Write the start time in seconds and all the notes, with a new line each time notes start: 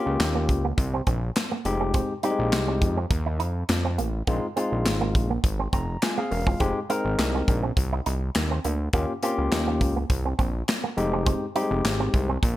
Already playing: A#3 C#4 F4 G4
0.06 C#2, muted clean electric guitar stroke
0.20 D#2, snare, clap, closed hi-hat
0.35 A#3
0.49 C#2, muted clean electric guitar stroke, kick, closed hi-hat
0.64 A#3
0.78 C2, muted clean electric guitar stroke, kick, closed hi-hat
0.94 C4
1.07 A#1 C4, kick, closed hi-hat
1.36 snare, clap, closed hi-hat
1.51 A#3
1.65 F1 G#3 C4 D#4 G4, muted clean electric guitar stroke, closed hi-hat
1.80 C4
1.94 C4, kick, closed hi-hat
2.23 G3 C4 D#4 G4, closed hi-hat
2.30 G#3
2.39 A#1, muted clean electric guitar stroke
2.52 C2, snare, clap, closed hi-hat
2.68 C4
2.81 F2, muted clean electric guitar stroke, kick, closed hi-hat
2.97 C4
3.10 D#2, muted clean electric guitar stroke, kick, closed hi-hat
3.26 D#4
3.40 F2 D#4, closed hi-hat
3.69 F2, muted clean electric guitar stroke, snare, clap, closed hi-hat
3.85 C4
3.98 A1 A#3, closed hi-hat
4.27 A#1 G#3 A#3 C4 D#4 F4, kick, closed hi-hat
4.56 G#3 C4 D#4 F4, closed hi-hat
4.72 A#1, muted clean electric guitar stroke
4.86 G#1, snare, clap, closed hi-hat
5.01 A#3
5.15 A#1, muted clean electric guitar stroke, kick, closed hi-hat
5.30 A#3
5.44 G#1, muted clean electric guitar stroke, kick, closed hi-hat
5.59 C4
5.73 F1 C4 A#5, kick, closed hi-hat
6.02 G#3 F4 G#5, snare, clap, closed hi-hat
6.17 A#3 C4 G#4 F5
6.31 E1 C#4 A#4 F5, muted clean electric guitar stroke, open hi-hat
6.47 G#3 C4 F4, kick
6.60 F1 G#3 C4 D#4 G4, kick, closed hi-hat
6.89 G#3 C4 D#4 A#4, closed hi-hat
7.05 G#1, muted clean electric guitar stroke
7.19 C2, snare, clap, closed hi-hat
7.34 C4
7.48 A#1, muted clean electric guitar stroke, kick, closed hi-hat
7.63 C4
7.77 C2, muted clean electric guitar stroke, kick, closed hi-hat
7.93 D#4
8.06 C2 D#4, closed hi-hat
8.35 D#2, muted clean electric guitar stroke, snare, clap, closed hi-hat
8.51 C4
8.64 D2 A#3, closed hi-hat
8.93 D#2 A#3 C#4 F4 G4, kick, closed hi-hat
9.23 A#3 C4 C#4 F4 G4, closed hi-hat
9.38 C#2, muted clean electric guitar stroke
9.52 D#2, snare, clap, closed hi-hat
9.67 A#3
9.81 C#2, muted clean electric guitar stroke, kick, closed hi-hat
9.96 A#3
10.10 C2, muted clean electric guitar stroke, kick, closed hi-hat
10.25 C4
10.39 A#1 C4, kick, closed hi-hat
10.68 snare, clap, closed hi-hat
10.84 A#3
10.97 F1 G#3 C4 D#4 G4, muted clean electric guitar stroke, closed hi-hat
11.13 C4
11.26 C4, kick, closed hi-hat
11.55 G3 C4 D#4 G4, closed hi-hat
11.62 G#3
11.71 F1, muted clean electric guitar stroke
11.85 G#1, snare, clap, closed hi-hat
12.00 C4
12.14 C2, muted clean electric guitar stroke, kick, closed hi-hat
12.29 C4
12.43 A#1, muted clean electric guitar stroke, kick, closed hi-hat